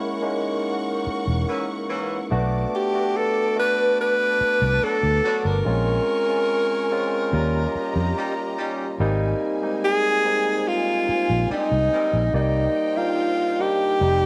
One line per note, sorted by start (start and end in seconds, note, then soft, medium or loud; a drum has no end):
0.00 0.22 G#3 medium
0.00 0.22 A#3 medium
0.00 0.23 C#4 medium
0.00 2.33 E4 loud
0.00 2.28 A#4 medium
0.00 2.28 F#5 medium
0.00 2.28 C#6 medium
0.22 1.76 G#3 medium
0.22 1.76 A#3 medium
0.22 1.76 C#4 medium
0.22 1.77 D#4 medium
1.07 muted fingered electric bass stroke soft
1.27 1.44 E1 medium
1.48 1.64 E3 medium
1.48 1.64 A#3 medium
1.48 1.65 C#4 medium
1.48 1.64 E4 medium
1.90 2.17 E3 medium
1.90 2.17 A#3 medium
1.90 2.17 C#4 medium
1.90 2.17 E4 medium
2.31 2.64 B1 medium
2.31 2.89 A3 loud
2.31 2.89 B3 loud
2.31 2.89 D4 loud
2.31 2.89 F#4 loud
2.31 5.62 B4 medium
2.31 5.62 A5 medium
2.31 5.62 D6 medium
2.75 3.18 G4 medium
2.94 3.52 A3 medium
2.94 3.52 B3 medium
2.94 3.52 D4 medium
2.94 3.52 F#4 medium
3.17 3.58 A4 loud
3.56 5.10 A3 medium
3.56 5.10 B3 medium
3.56 5.10 D4 medium
3.56 5.10 F#4 medium
3.56 3.97 B4 loud
4.01 4.85 B4 loud
4.41 muted fingered electric bass stroke soft
4.62 4.78 C2 loud
4.82 4.98 F#3 medium
4.82 4.99 B3 medium
4.82 4.98 D4 medium
4.82 4.98 F#4 medium
4.82 5.39 A4 loud
5.03 5.19 D2 medium
5.24 5.52 F#3 medium
5.24 5.52 B3 medium
5.24 5.52 D4 medium
5.24 5.52 F#4 loud
5.39 5.48 A4 medium
5.45 5.61 G1 medium
5.45 8.59 A#4 medium
5.65 5.98 A#1 medium
5.65 6.23 G#3 medium
5.65 6.23 C4 medium
5.65 6.23 C#4 medium
5.65 6.24 F4 loud
5.65 7.30 A#4 medium
5.65 7.30 G#5 medium
5.65 7.30 C#6 medium
6.28 6.86 G#3 medium
6.28 6.86 C4 medium
6.28 6.86 C#4 medium
6.28 6.87 F4 medium
6.91 7.33 G#3 medium
6.91 7.33 C4 medium
6.91 7.32 C#4 medium
6.91 7.33 F4 medium
7.33 7.65 D#2 loud
7.33 8.86 G3 medium
7.33 8.87 A#3 medium
7.33 8.87 C#4 medium
7.33 8.87 F4 medium
7.33 8.97 G4 medium
7.33 8.97 D#5 loud
7.33 8.97 A#5 loud
7.75 muted fingered electric bass stroke soft
7.96 8.12 F2 medium
8.17 8.33 G3 medium
8.17 8.33 C#4 medium
8.17 8.33 D#4 medium
8.17 8.33 G4 medium
8.58 8.86 G3 medium
8.58 8.86 C#4 medium
8.58 8.86 D#4 medium
8.58 8.86 G4 medium
9.00 9.32 G#1 loud
9.00 9.58 G3 loud
9.00 9.58 A#3 loud
9.00 9.58 C4 loud
9.00 12.30 D#4 medium
9.00 9.58 D#4 loud
9.00 12.30 C5 medium
9.00 12.30 G#5 medium
9.62 10.20 G#3 medium
9.62 10.20 A#3 medium
9.62 10.20 C4 medium
9.62 10.21 D#4 medium
9.85 10.69 G#4 loud
10.25 11.79 G#3 medium
10.25 11.79 A#3 medium
10.25 11.79 C4 medium
10.25 11.79 D#4 medium
10.68 11.51 F4 loud
11.09 muted fingered electric bass stroke soft
11.30 11.46 A#1 medium
11.51 11.67 G3 medium
11.51 11.67 C4 medium
11.51 11.67 D#4 medium
11.51 12.31 D#4 medium
11.51 11.67 G4 medium
11.72 11.88 C2 medium
11.93 12.20 D#3 medium
11.93 12.20 G3 medium
11.93 12.20 C4 medium
11.93 12.20 D#4 medium
12.13 12.30 A#1 medium
12.33 12.66 C2 loud
12.33 12.91 G3 medium
12.33 12.92 A#3 medium
12.33 13.98 D#4 medium
12.33 12.92 D#4 loud
12.33 12.99 D#4 medium
12.33 13.98 C5 medium
12.33 12.92 D5 medium
12.33 13.98 G5 medium
12.96 13.54 G3 medium
12.96 13.55 A#3 medium
12.96 13.55 D4 medium
12.96 13.55 D#4 medium
12.96 13.62 F4 loud
13.59 14.00 G3 medium
13.59 14.01 A#3 medium
13.59 14.02 D4 medium
13.59 14.01 D#4 medium
13.59 14.26 G4 loud
14.01 14.26 F1 loud
14.01 14.26 G3 medium
14.01 14.26 A3 medium
14.01 14.26 C4 medium
14.01 14.26 D#4 medium
14.01 14.26 C5 medium
14.01 14.26 G5 loud